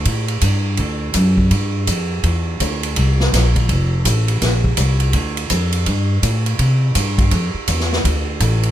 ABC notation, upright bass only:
X:1
M:4/4
L:1/8
Q:"Swing" 1/4=165
K:F
V:1 name="Upright bass" clef=bass
A,,2 G,,2 D,,2 ^F,,2 | G,,2 F,,2 E,,2 D,,2 | C,,2 B,,,2 F,,,2 A,,,2 | B,,,2 C,,2 D,,2 F,,2 |
G,,2 A,,2 C,2 G,,2 | F,, z E,,2 D,,2 A,,,2 |]